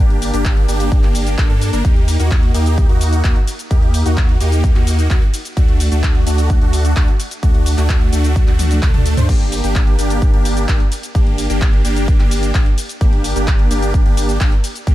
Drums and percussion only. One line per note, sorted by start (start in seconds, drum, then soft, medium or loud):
0.10 closed hi-hat soft
0.22 open hi-hat loud
0.22 shaker medium
0.34 closed hi-hat medium
0.34 shaker soft
0.45 kick loud
0.45 clap loud
0.45 closed hi-hat medium
0.45 shaker soft
0.57 closed hi-hat soft
0.68 open hi-hat medium
0.68 shaker medium
0.80 closed hi-hat medium
0.80 shaker soft
0.92 kick loud
0.92 closed hi-hat soft
0.92 shaker soft
1.03 clap soft
1.03 closed hi-hat soft
1.15 open hi-hat loud
1.15 shaker medium
1.27 closed hi-hat medium
1.27 shaker soft
1.38 kick loud
1.38 clap loud
1.38 closed hi-hat soft
1.38 shaker soft
1.50 closed hi-hat soft
1.61 open hi-hat loud
1.61 shaker medium
1.73 closed hi-hat soft
1.73 shaker soft
1.85 kick loud
1.85 closed hi-hat medium
1.85 shaker soft
1.96 closed hi-hat soft
2.08 open hi-hat loud
2.08 ride medium
2.08 shaker medium
2.20 closed hi-hat medium
2.20 shaker soft
2.31 kick loud
2.31 clap loud
2.31 closed hi-hat medium
2.31 shaker soft
2.43 closed hi-hat soft
2.54 open hi-hat medium
2.54 ride medium
2.54 shaker medium
2.66 closed hi-hat soft
2.66 shaker soft
2.78 kick loud
2.78 closed hi-hat medium
2.78 shaker soft
2.89 closed hi-hat soft
3.01 open hi-hat loud
3.01 ride medium
3.01 shaker medium
3.13 closed hi-hat medium
3.13 shaker soft
3.24 kick loud
3.24 clap loud
3.24 closed hi-hat medium
3.24 shaker soft
3.36 closed hi-hat soft
3.48 open hi-hat medium
3.48 ride medium
3.48 shaker medium
3.59 closed hi-hat soft
3.59 shaker soft
3.71 kick loud
3.71 closed hi-hat medium
3.71 shaker soft
3.82 closed hi-hat soft
3.94 open hi-hat loud
3.94 ride medium
3.94 shaker medium
4.06 closed hi-hat medium
4.06 shaker soft
4.17 kick loud
4.17 clap loud
4.17 closed hi-hat medium
4.17 shaker soft
4.29 closed hi-hat soft
4.41 open hi-hat medium
4.41 ride medium
4.41 shaker medium
4.52 closed hi-hat medium
4.52 shaker soft
4.64 kick loud
4.64 closed hi-hat medium
4.64 shaker soft
4.75 clap soft
4.75 closed hi-hat soft
4.87 open hi-hat loud
4.87 ride medium
4.87 shaker medium
4.99 closed hi-hat medium
4.99 shaker soft
5.10 kick loud
5.10 clap loud
5.10 closed hi-hat medium
5.10 shaker soft
5.22 closed hi-hat soft
5.34 open hi-hat medium
5.34 ride medium
5.34 shaker medium
5.45 closed hi-hat medium
5.45 shaker soft
5.57 kick loud
5.57 closed hi-hat medium
5.57 shaker soft
5.69 closed hi-hat soft
5.80 open hi-hat loud
5.80 ride medium
5.80 shaker medium
5.92 closed hi-hat medium
5.92 shaker soft
6.03 kick loud
6.03 clap loud
6.03 closed hi-hat medium
6.03 shaker soft
6.15 closed hi-hat soft
6.27 open hi-hat medium
6.27 ride medium
6.27 shaker medium
6.38 closed hi-hat medium
6.38 shaker soft
6.50 kick loud
6.50 closed hi-hat medium
6.50 shaker soft
6.61 closed hi-hat soft
6.73 open hi-hat loud
6.73 ride medium
6.73 shaker medium
6.85 closed hi-hat medium
6.85 shaker soft
6.96 kick loud
6.96 clap loud
6.96 closed hi-hat medium
6.96 shaker soft
7.08 closed hi-hat soft
7.20 open hi-hat medium
7.20 ride medium
7.20 shaker medium
7.31 closed hi-hat medium
7.31 shaker soft
7.43 kick loud
7.43 closed hi-hat medium
7.43 shaker soft
7.55 closed hi-hat soft
7.66 open hi-hat loud
7.66 ride medium
7.66 shaker medium
7.78 clap soft
7.78 closed hi-hat medium
7.78 shaker soft
7.89 kick loud
7.89 clap loud
7.89 closed hi-hat medium
7.89 shaker soft
8.01 closed hi-hat soft
8.13 open hi-hat medium
8.13 ride medium
8.13 shaker medium
8.24 closed hi-hat medium
8.24 shaker soft
8.36 kick loud
8.36 closed hi-hat medium
8.36 shaker soft
8.48 clap soft
8.48 closed hi-hat soft
8.59 open hi-hat loud
8.59 high tom medium
8.59 ride medium
8.59 shaker medium
8.71 closed hi-hat medium
8.71 high tom medium
8.71 shaker soft
8.82 kick loud
8.82 clap loud
8.82 closed hi-hat medium
8.82 mid tom medium
8.82 shaker soft
8.94 closed hi-hat soft
8.94 mid tom medium
9.06 open hi-hat medium
9.06 ride medium
9.06 shaker medium
9.17 closed hi-hat medium
9.17 mid tom medium
9.17 shaker soft
9.29 kick loud
9.29 closed hi-hat medium
9.29 crash loud
9.29 shaker soft
9.41 closed hi-hat soft
9.52 open hi-hat loud
9.52 ride medium
9.52 shaker medium
9.64 closed hi-hat medium
9.64 shaker soft
9.75 kick loud
9.75 clap loud
9.75 closed hi-hat medium
9.75 shaker soft
9.87 closed hi-hat soft
9.99 open hi-hat medium
9.99 ride medium
9.99 shaker medium
10.10 closed hi-hat medium
10.10 shaker soft
10.22 kick loud
10.22 closed hi-hat medium
10.22 shaker soft
10.34 closed hi-hat soft
10.45 open hi-hat loud
10.45 ride medium
10.45 shaker medium
10.57 closed hi-hat medium
10.57 shaker soft
10.68 kick loud
10.68 clap loud
10.68 closed hi-hat medium
10.68 shaker soft
10.80 closed hi-hat soft
10.92 open hi-hat medium
10.92 ride medium
10.92 shaker medium
11.03 closed hi-hat medium
11.03 shaker soft
11.15 kick loud
11.15 closed hi-hat medium
11.15 shaker soft
11.27 closed hi-hat soft
11.38 open hi-hat loud
11.38 ride medium
11.38 shaker medium
11.50 closed hi-hat medium
11.50 shaker soft
11.61 kick loud
11.61 clap loud
11.61 closed hi-hat medium
11.61 shaker soft
11.73 closed hi-hat soft
11.85 open hi-hat medium
11.85 ride medium
11.85 shaker medium
11.96 closed hi-hat medium
11.96 shaker soft
12.08 kick loud
12.08 closed hi-hat medium
12.08 shaker soft
12.20 clap soft
12.20 closed hi-hat soft
12.31 open hi-hat loud
12.31 ride medium
12.31 shaker medium
12.43 closed hi-hat medium
12.43 shaker soft
12.55 kick loud
12.55 clap loud
12.55 closed hi-hat medium
12.55 shaker soft
12.66 closed hi-hat soft
12.78 open hi-hat loud
12.78 ride medium
12.78 shaker medium
12.89 closed hi-hat medium
12.89 shaker soft
13.01 kick loud
13.01 closed hi-hat medium
13.01 shaker soft
13.13 closed hi-hat soft
13.24 open hi-hat loud
13.24 ride medium
13.24 shaker medium
13.36 closed hi-hat medium
13.36 shaker soft
13.48 kick loud
13.48 clap loud
13.48 closed hi-hat medium
13.48 shaker soft
13.59 closed hi-hat soft
13.71 open hi-hat loud
13.71 ride medium
13.71 shaker medium
13.82 closed hi-hat medium
13.82 shaker soft
13.94 kick loud
13.94 closed hi-hat medium
13.94 shaker soft
14.06 closed hi-hat soft
14.17 open hi-hat loud
14.17 ride medium
14.17 shaker medium
14.29 closed hi-hat medium
14.29 shaker soft
14.41 kick loud
14.41 clap loud
14.41 closed hi-hat medium
14.41 shaker soft
14.52 closed hi-hat soft
14.64 open hi-hat loud
14.64 ride medium
14.64 shaker medium
14.76 closed hi-hat medium
14.76 shaker soft
14.87 kick loud
14.87 closed hi-hat medium
14.87 shaker soft